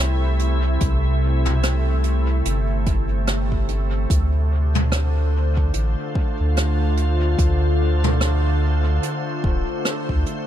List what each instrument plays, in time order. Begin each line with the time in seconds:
Already playing: sub bass C2, ambient pad C3 A3 E4 C5
0.39 closed hi-hat
0.80 sub bass C2, kick, closed hi-hat
1.45 mid tom
1.63 cross-stick, closed hi-hat
2.04 closed hi-hat
2.45 sub bass G1, closed hi-hat
2.86 kick, closed hi-hat
3.27 cross-stick, closed hi-hat
3.52 kick
3.69 closed hi-hat
4.10 sub bass D2, ambient pad D3, kick, closed hi-hat
4.34 ambient pad A3 C5
4.75 mid tom
4.92 cross-stick, closed hi-hat
5.49 ambient pad F4
5.57 kick
5.73 sub bass A1, closed hi-hat
6.15 kick
6.40 sub bass D2
6.57 cross-stick, closed hi-hat
6.97 closed hi-hat
7.39 sub bass D2, kick, closed hi-hat
8.04 mid tom
8.21 cross-stick, closed hi-hat
9.03 closed hi-hat
9.44 sub bass D1, kick
9.85 cross-stick, closed hi-hat
10.09 sub bass D2, kick
10.26 closed hi-hat